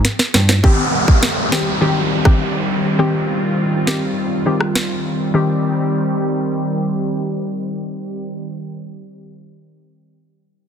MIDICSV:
0, 0, Header, 1, 6, 480
1, 0, Start_track
1, 0, Key_signature, -3, "minor"
1, 0, Tempo, 588235
1, 519, Time_signature, 4, 2, 24, 8
1, 8716, End_track
2, 0, Start_track
2, 0, Title_t, "Analog synth pad"
2, 0, Program_c, 0, 89
2, 522, Note_on_c, 0, 55, 71
2, 522, Note_on_c, 0, 60, 70
2, 523, Note_on_c, 0, 51, 77
2, 524, Note_on_c, 0, 67, 81
2, 2422, Note_off_c, 0, 67, 0
2, 2440, Note_on_c, 0, 65, 80
2, 4328, Note_off_c, 0, 55, 0
2, 4328, Note_off_c, 0, 60, 0
2, 4329, Note_off_c, 0, 51, 0
2, 4340, Note_off_c, 0, 65, 0
2, 4359, Note_on_c, 0, 55, 68
2, 4360, Note_on_c, 0, 51, 75
2, 4360, Note_on_c, 0, 60, 67
2, 4360, Note_on_c, 0, 67, 82
2, 6899, Note_off_c, 0, 55, 0
2, 6900, Note_off_c, 0, 51, 0
2, 6900, Note_off_c, 0, 60, 0
2, 6900, Note_off_c, 0, 67, 0
2, 8716, End_track
3, 0, Start_track
3, 0, Title_t, "Synth pluck"
3, 0, Program_c, 1, 84
3, 517, Note_on_c, 1, 51, 91
3, 518, Note_on_c, 1, 60, 81
3, 522, Note_on_c, 1, 67, 104
3, 960, Note_off_c, 1, 51, 0
3, 960, Note_off_c, 1, 60, 0
3, 962, Note_off_c, 1, 67, 0
3, 1238, Note_on_c, 1, 51, 74
3, 1240, Note_on_c, 1, 60, 67
3, 1243, Note_on_c, 1, 67, 81
3, 1362, Note_off_c, 1, 51, 0
3, 1364, Note_off_c, 1, 60, 0
3, 1365, Note_off_c, 1, 67, 0
3, 1477, Note_on_c, 1, 51, 94
3, 1480, Note_on_c, 1, 60, 85
3, 1482, Note_on_c, 1, 67, 98
3, 1810, Note_off_c, 1, 51, 0
3, 1811, Note_off_c, 1, 60, 0
3, 1812, Note_off_c, 1, 67, 0
3, 1835, Note_on_c, 1, 51, 77
3, 1838, Note_on_c, 1, 60, 71
3, 1840, Note_on_c, 1, 67, 87
3, 1961, Note_off_c, 1, 51, 0
3, 1962, Note_off_c, 1, 60, 0
3, 1963, Note_off_c, 1, 67, 0
3, 2437, Note_on_c, 1, 51, 92
3, 2439, Note_on_c, 1, 60, 84
3, 2442, Note_on_c, 1, 67, 99
3, 2880, Note_off_c, 1, 51, 0
3, 2881, Note_off_c, 1, 60, 0
3, 2882, Note_off_c, 1, 67, 0
3, 3156, Note_on_c, 1, 51, 69
3, 3159, Note_on_c, 1, 60, 64
3, 3161, Note_on_c, 1, 67, 77
3, 3281, Note_off_c, 1, 51, 0
3, 3283, Note_off_c, 1, 60, 0
3, 3284, Note_off_c, 1, 67, 0
3, 3638, Note_on_c, 1, 51, 74
3, 3640, Note_on_c, 1, 60, 66
3, 3644, Note_on_c, 1, 67, 81
3, 3762, Note_off_c, 1, 51, 0
3, 3763, Note_off_c, 1, 60, 0
3, 3765, Note_off_c, 1, 67, 0
3, 4356, Note_on_c, 1, 51, 84
3, 4359, Note_on_c, 1, 60, 74
3, 4363, Note_on_c, 1, 67, 93
3, 6897, Note_off_c, 1, 51, 0
3, 6901, Note_off_c, 1, 60, 0
3, 6905, Note_off_c, 1, 67, 0
3, 8716, End_track
4, 0, Start_track
4, 0, Title_t, "Tine electric piano"
4, 0, Program_c, 2, 4
4, 280, Note_on_c, 2, 43, 92
4, 471, Note_off_c, 2, 43, 0
4, 8716, End_track
5, 0, Start_track
5, 0, Title_t, "Downlifter"
5, 0, Program_c, 3, 103
5, 519, Note_on_c, 3, 60, 80
5, 4359, Note_off_c, 3, 60, 0
5, 8716, End_track
6, 0, Start_track
6, 0, Title_t, "Drums"
6, 38, Note_on_c, 9, 38, 67
6, 39, Note_on_c, 9, 42, 70
6, 120, Note_off_c, 9, 38, 0
6, 121, Note_off_c, 9, 42, 0
6, 157, Note_on_c, 9, 38, 67
6, 239, Note_off_c, 9, 38, 0
6, 279, Note_on_c, 9, 38, 100
6, 288, Note_on_c, 9, 61, 64
6, 361, Note_off_c, 9, 38, 0
6, 370, Note_off_c, 9, 61, 0
6, 399, Note_on_c, 9, 38, 99
6, 402, Note_on_c, 9, 60, 68
6, 481, Note_off_c, 9, 38, 0
6, 484, Note_off_c, 9, 60, 0
6, 520, Note_on_c, 9, 36, 114
6, 602, Note_off_c, 9, 36, 0
6, 882, Note_on_c, 9, 36, 81
6, 963, Note_off_c, 9, 36, 0
6, 1001, Note_on_c, 9, 38, 102
6, 1082, Note_off_c, 9, 38, 0
6, 1242, Note_on_c, 9, 38, 106
6, 1324, Note_off_c, 9, 38, 0
6, 1838, Note_on_c, 9, 36, 94
6, 1838, Note_on_c, 9, 37, 90
6, 1920, Note_off_c, 9, 36, 0
6, 1920, Note_off_c, 9, 37, 0
6, 3161, Note_on_c, 9, 38, 101
6, 3243, Note_off_c, 9, 38, 0
6, 3758, Note_on_c, 9, 37, 88
6, 3840, Note_off_c, 9, 37, 0
6, 3880, Note_on_c, 9, 38, 103
6, 3962, Note_off_c, 9, 38, 0
6, 8716, End_track
0, 0, End_of_file